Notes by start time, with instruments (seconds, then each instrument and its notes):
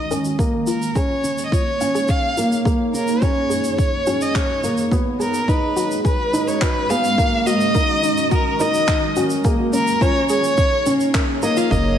Already playing: ambient pad D#3 G#3 C#4 F#4 A#4, violin D#5
0.11 felt piano C#4, synth arpeggio sound A#4, shaker
0.25 shaker
0.39 ambient pad A#3, felt piano A#3, synth arpeggio sound C#4, kick, shaker
0.64 synth arpeggio sound F4, ambient pad C#5, shaker
0.68 violin A#4
0.74 ambient pad D#4
0.82 shaker
0.92 felt piano C#4, ambient pad G#4, synth arpeggio sound G#4, kick, shaker
0.97 violin C#5
1.24 synth arpeggio sound C#4, shaker
1.38 shaker
1.46 violin D#5
1.52 synth arpeggio sound F4, violin C#5, kick, shaker
1.81 felt piano C#4, synth arpeggio sound F5, shaker
1.95 synth arpeggio sound G#4, shaker
2.08 synth arpeggio sound G#4, violin F5, kick, shaker
2.37 felt piano A#3, synth arpeggio sound F4, shaker
2.52 shaker
2.65 ambient pad F#2, felt piano A#3, synth arpeggio sound G#4, kick, shaker
2.94 synth arpeggio sound C#4, violin A#4, shaker
3.08 shaker
3.22 felt piano C#4, synth arpeggio sound F#4, violin C#5, kick, shaker
3.50 synth arpeggio sound G#4, shaker
3.64 shaker
3.78 synth arpeggio sound C#4, violin C#5, kick, shaker
4.07 felt piano C#4, synth arpeggio sound F#4, shaker
4.21 violin D#5, shaker
4.35 synth arpeggio sound G#4, violin C#5, kick, clap, shaker
4.63 felt piano A#3, synth arpeggio sound C#4, shaker
4.77 shaker
4.91 ambient pad G#3, felt piano B3, synth arpeggio sound F#4, kick, shaker
5.02 ambient pad F#4
5.20 synth arpeggio sound G#4, violin A#4, shaker
5.29 ambient pad C#4
5.34 shaker
5.48 synth arpeggio sound D#4, felt piano D#4, violin B4, kick, shaker
5.76 synth arpeggio sound F#4, shaker
5.91 shaker
6.05 synth arpeggio sound G#4, violin B4, kick, shaker
6.33 synth arpeggio sound D#4, felt piano D#4, shaker
6.47 violin C#5, shaker
6.61 synth arpeggio sound F#4, violin B4, kick, clap, shaker
6.90 felt piano B3, synth arpeggio sound G#4, violin F5, shaker
7.04 shaker
7.18 ambient pad D#3, felt piano A#3, synth arpeggio sound D#4, kick, shaker
7.47 synth arpeggio sound F#4, violin D#5, shaker
7.60 shaker
7.75 felt piano D#4, synth arpeggio sound A#4, kick, shaker
8.03 synth arpeggio sound D#4, shaker
8.17 ambient pad A#4, shaker
8.31 synth arpeggio sound F#4, violin A#4, kick, shaker
8.60 felt piano D#4, synth arpeggio sound A#4, violin D#5, shaker
8.74 shaker
8.88 synth arpeggio sound D#4, kick, clap, shaker
9.16 felt piano C#4, synth arpeggio sound F#4, shaker
9.30 shaker
9.44 felt piano A#3, ambient pad A#3, synth arpeggio sound G#4, kick, shaker
9.51 ambient pad D#4
9.73 synth arpeggio sound C#4, violin A#4, shaker
9.87 shaker
9.97 ambient pad C#5
10.01 felt piano C#4, synth arpeggio sound F4, violin C#5, kick, shaker
10.20 ambient pad G#4
10.29 synth arpeggio sound G#4, violin C#5, shaker
10.44 shaker
10.57 synth arpeggio sound C#4, kick, shaker
10.86 synth arpeggio sound C#4, felt piano C#4, shaker
11.00 shaker
11.14 synth arpeggio sound A#4, kick, clap, shaker
11.43 felt piano A#3, synth arpeggio sound A#4, violin D#5, shaker
11.57 synth arpeggio sound F4, violin F5, shaker
11.71 analog synth bass F#1, felt piano A#3, synth arpeggio sound C#4, violin D#5, kick, shaker